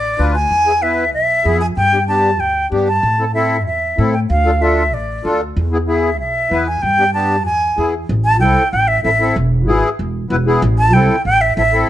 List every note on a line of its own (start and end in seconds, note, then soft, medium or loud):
0.00 0.13 A1 medium
0.00 0.32 D5 loud
0.19 0.44 D2 medium
0.19 0.35 D4 medium
0.19 0.36 F4 medium
0.19 0.36 B4 medium
0.35 0.84 G#5 loud
0.50 1.13 E2 medium
0.66 0.72 B3 medium
0.66 0.72 E4 medium
0.66 0.72 G#4 medium
0.82 1.04 B3 medium
0.82 1.05 E4 medium
0.82 1.05 B4 medium
0.82 1.13 E5 medium
1.13 1.39 B1 medium
1.13 1.58 E5 loud
1.45 1.71 F2 medium
1.45 1.62 B3 medium
1.45 1.62 E4 medium
1.45 1.62 G#4 medium
1.61 1.67 G#5 medium
1.77 2.40 G2 medium
1.77 2.06 G5 loud
1.92 1.98 B3 medium
1.92 1.98 D4 medium
1.92 1.98 G4 medium
2.08 2.30 B3 medium
2.08 2.31 D4 medium
2.08 2.31 G4 medium
2.08 2.41 A5 medium
2.40 2.65 D2 medium
2.40 2.66 G5 medium
2.71 2.97 G2 medium
2.71 2.88 B3 medium
2.71 2.88 D4 medium
2.71 2.88 G4 medium
2.88 3.32 A5 medium
3.03 3.67 A2 medium
3.19 3.24 C4 medium
3.19 3.25 E4 medium
3.19 3.25 A4 medium
3.35 3.57 C4 medium
3.35 3.57 E4 medium
3.35 3.57 A4 medium
3.35 3.64 E5 medium
3.66 3.92 E2 medium
3.66 4.10 E5 medium
3.97 4.24 A2 medium
3.97 4.14 C4 medium
3.97 4.15 E4 medium
3.97 4.15 A4 medium
4.14 4.20 G5 medium
4.30 4.93 D2 medium
4.30 4.63 F5 medium
4.45 4.51 D4 medium
4.45 4.51 F4 medium
4.45 4.51 A4 medium
4.61 4.83 D4 medium
4.61 4.83 F4 medium
4.61 4.84 A4 medium
4.61 4.95 E5 medium
4.93 5.18 A1 medium
4.93 5.41 D5 medium
5.24 5.50 D2 medium
5.24 5.41 D4 medium
5.24 5.41 F4 medium
5.24 5.41 A4 medium
5.57 6.20 E2 medium
5.72 5.77 B3 medium
5.72 5.78 E4 medium
5.72 5.78 G#4 medium
5.87 6.10 B3 medium
5.87 6.10 E4 medium
5.87 6.10 G#4 medium
5.87 6.17 E5 medium
6.20 6.45 B1 medium
6.20 6.64 E5 medium
6.51 6.77 E2 medium
6.51 6.68 B3 medium
6.51 6.68 E4 medium
6.51 6.68 B4 medium
6.67 6.84 G#5 medium
6.82 7.46 G2 medium
6.82 7.13 G5 loud
6.98 7.04 B3 medium
6.98 7.04 D4 soft
6.98 7.04 G4 medium
7.14 7.36 B3 medium
7.14 7.36 D4 medium
7.14 7.37 G4 medium
7.14 7.43 A5 medium
7.46 7.71 E2 medium
7.46 7.90 G#5 medium
7.77 8.03 E2 medium
7.77 7.94 B3 medium
7.77 7.94 E4 medium
7.77 7.95 G#4 medium
8.09 8.41 A1 loud
8.25 8.40 A5 loud
8.40 8.54 C2 loud
8.40 8.63 C4 medium
8.40 8.63 E4 medium
8.40 8.63 A4 medium
8.40 8.71 G5 medium
8.72 8.98 A1 medium
8.72 8.89 G5 loud
8.88 9.03 E5 loud
9.04 9.30 A1 medium
9.04 9.09 C4 medium
9.04 9.10 E4 medium
9.04 9.10 A4 medium
9.04 9.35 E5 medium
9.20 9.36 C4 medium
9.20 9.36 E4 medium
9.20 9.36 A4 medium
9.36 9.68 E1 loud
9.67 9.80 G#1 loud
9.67 9.89 B3 medium
9.67 9.89 E4 medium
9.67 9.90 G#4 medium
9.99 10.24 E1 medium
10.30 10.56 E1 loud
10.30 10.36 B3 medium
10.30 10.36 E4 medium
10.30 10.36 B4 loud
10.46 10.62 B3 medium
10.46 10.62 E4 medium
10.46 10.62 G#4 medium
10.62 10.93 A1 loud
10.78 10.95 A5 medium
10.93 11.06 C2 loud
10.93 11.16 C4 medium
10.93 11.16 E4 medium
10.93 11.16 A4 medium
10.93 11.24 G5 medium
11.25 11.51 A1 medium
11.25 11.43 G5 loud
11.41 11.57 E5 loud
11.57 11.82 A1 loud
11.57 11.62 C4 medium
11.57 11.63 E4 medium
11.57 11.63 A4 medium
11.57 11.88 E5 loud
11.72 11.88 C4 medium
11.72 11.89 E4 medium
11.72 11.89 A4 medium